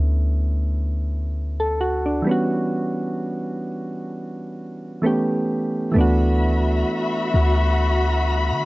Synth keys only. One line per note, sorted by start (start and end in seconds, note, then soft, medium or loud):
0.00 1.74 D3 medium
0.00 1.75 A3 medium
0.00 1.76 B3 medium
0.00 0.85 C#4 medium
0.00 0.86 E4 medium
1.60 1.79 A4 medium
1.81 2.04 F#4 medium
2.06 2.49 D4 medium
2.22 4.97 E3 medium
2.22 4.98 G3 medium
2.27 4.99 B3 medium
2.27 5.00 C#4 medium
2.31 5.01 F#4 medium
5.02 5.91 E3 medium
5.02 5.93 A3 medium
5.02 5.95 B3 medium
5.02 5.96 C#4 medium
5.06 5.97 G4 medium
5.92 8.65 E3 medium
5.92 8.65 A3 medium
5.96 8.65 B3 medium
5.96 8.65 D4 medium
6.01 8.65 F#4 medium